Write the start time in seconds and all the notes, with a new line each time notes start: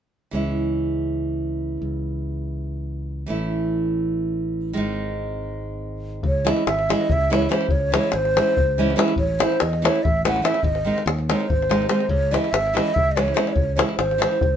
0.31 C#2 E3 G#3 C#4 E4
1.82 C#2
3.26 A1 E3 A3 C#4 E4
4.73 G#1 D#3 G#3 C4 D#4
6.23 C#2 C#5, davul low
6.45 E3 G#3 C#4 E4, davul high
6.51 D#5
6.56 davul high
6.67 G#1 E5, davul high
6.79 davul high
6.89 E3 G#3 C#4 E4 D#5, davul high
7.01 davul high
7.09 C#2 E5, davul low
7.30 E3 G#3 C#4 E4, davul high
7.34 C#5
7.42 davul high
7.49 E3 G#3 C#4 E4, davul high
7.54 C5
7.61 davul high
7.68 C#2 C#5, davul low
7.92 E3 G#3 C#4 E4, davul high
7.96 C#5
8.03 davul high
8.12 G#1 C5, davul high
8.25 davul high
8.37 E3 G#3 C#4 E4, davul high
8.47 davul high
8.57 C#2, davul low
8.78 E3 G#3 C#4 E4
8.90 davul high
8.96 E3 G#3 C#4 E4, davul high
9.08 davul high
9.16 A1 C#5, davul low
9.39 E3 A3 C#4 E4, davul high
9.43 C5
9.52 davul high
9.60 E2 D#5, davul high
9.73 davul high
9.82 E3 A3 C#4 E4 C#5, davul high
9.96 davul high
10.03 A1 E5, davul low
10.25 E3 A3 C#4 E4 F#5, davul high
10.36 davul high
10.42 E3 A3 C#4 E4 E5, davul high
10.54 davul high
10.63 G#1 D#5, davul low
10.75 davul high
10.85 D#3 G#3 C4 D#4
10.98 davul high
11.06 D#2, davul high
11.19 davul high
11.29 D#3 G#3 C4 D#4 C#5, davul high
11.41 davul high
11.49 G#1 C5, davul low
11.62 davul high
11.69 D#3 G#3 C4 D#4, davul high
11.82 davul high
11.89 D#3 G#3 C4 D#4 C5, davul high
12.00 davul high
12.09 C#2 C#5, davul low
12.31 E3 G#3 C#4 E4 D#5, davul high
12.44 davul high
12.52 G#1 E5, davul high
12.67 davul high
12.74 E3 G#3 C#4 E4 D#5, davul high
12.88 davul high
12.94 C#2 E5, davul low
13.11 D#5
13.16 E3 G#3 C#4 E4 C#5, davul high
13.28 davul high
13.34 E3 G#3 C#4 E4 C5, davul high
13.47 D#5, davul high
13.53 C#2 C#5, davul low
13.75 E3 G#3 C#4 E4 C#5, davul high
13.89 davul high
13.95 G#1 C5, davul high
14.11 davul high
14.18 E3 G#3 C#4 E4, davul high
14.31 davul high
14.41 C#2, davul low